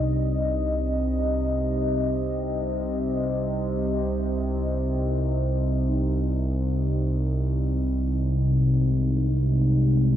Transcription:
0.00 10.16 C2 medium
0.00 10.16 C3 medium
0.00 10.16 C4 medium
0.00 9.66 G4 medium
0.00 5.92 C5 medium
0.00 5.88 D5 medium
0.00 9.96 D#5 medium
5.87 10.16 C3 medium
5.87 10.16 D#4 medium
6.55 10.16 D#4 medium
7.45 10.16 G#3 medium

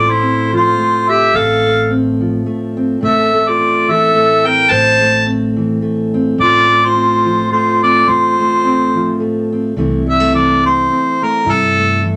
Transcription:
0.00 0.73 A1 medium
0.00 1.33 A2 medium
0.00 0.78 A3 medium
0.00 0.21 C4 medium
0.00 0.12 F4 medium
0.00 0.11 D5 medium
0.10 0.53 E4 medium
0.10 0.53 C5 medium
0.21 1.09 C4 medium
0.52 1.31 F3 medium
0.52 1.11 F4 medium
0.56 1.11 C5 medium
0.78 1.65 A3 medium
1.09 1.90 C4 medium
1.09 1.37 G4 medium
1.09 1.38 E5 medium
1.33 2.42 A1 medium
1.33 3.00 A2 medium
1.33 1.91 A4 medium
1.33 1.91 F5 loud
1.66 2.46 A3 medium
1.90 2.76 C4 medium
2.21 2.99 F3 medium
2.46 3.02 A3 medium
2.77 3.02 C4 medium
3.01 4.11 A1 medium
3.01 4.70 A2 medium
3.01 3.33 A3 medium
3.01 3.58 C4 medium
3.01 3.49 E5 medium
3.06 3.50 A4 medium
3.34 4.14 A3 medium
3.48 3.93 F4 medium
3.48 3.92 D5 medium
3.58 4.45 C4 medium
3.88 4.67 E3 medium
3.88 4.48 A4 medium
3.88 4.48 E5 medium
4.14 5.01 A3 medium
4.45 5.25 C4 medium
4.45 4.73 A#4 medium
4.45 4.72 G5 medium
4.70 5.79 A1 medium
4.70 6.38 A2 medium
4.70 5.27 C5 medium
4.70 5.27 A5 loud
5.01 5.82 A3 medium
5.26 6.14 C4 medium
5.56 6.35 E3 medium
5.82 6.70 A3 medium
6.14 6.94 C4 medium
6.38 7.47 A1 medium
6.38 8.06 A2 medium
6.38 6.83 F4 medium
6.38 6.86 D5 loud
6.70 7.51 A3 medium
6.83 7.51 F4 medium
6.83 7.51 C5 loud
6.95 7.82 C4 medium
7.25 8.04 F3 medium
7.51 8.39 A3 medium
7.51 7.81 F4 medium
7.51 7.81 C5 medium
7.82 8.64 C4 medium
7.82 8.08 F4 medium
7.82 8.10 D5 medium
8.07 9.16 A1 medium
8.07 9.76 A2 medium
8.07 9.20 F4 medium
8.07 9.21 C5 medium
8.40 9.19 A3 medium
8.65 9.51 C4 medium
8.95 9.74 F3 medium
9.20 9.74 A3 soft
9.52 9.74 C4 medium
9.76 10.85 C2 medium
9.76 10.33 C3 medium
9.76 10.32 E3 medium
9.76 10.06 A3 medium
9.76 10.88 C4 medium
9.76 11.45 E4 medium
10.07 10.20 G3 medium
10.07 10.32 E5 medium
10.20 10.63 A3 soft
10.33 11.42 E3 medium
10.33 10.63 D5 medium
10.64 11.21 A3 medium
10.64 11.25 C5 medium
10.90 11.43 C4 soft
11.22 11.43 A3 medium
11.22 11.52 A#4 medium
11.45 12.16 G2 medium
11.45 12.02 C3 medium
11.45 12.16 E4 medium
11.50 12.04 A4 medium
11.77 12.16 A3 medium
12.02 12.16 E3 medium

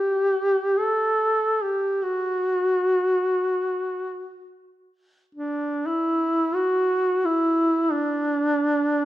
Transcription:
0.00 0.80 G4 medium
0.78 1.65 A4 medium
1.63 2.04 G4 medium
2.03 4.50 F#4 medium
5.35 5.88 D4 medium
5.87 6.57 E4 medium
6.55 7.27 F#4 medium
7.25 7.94 E4 medium
7.92 9.05 D4 medium

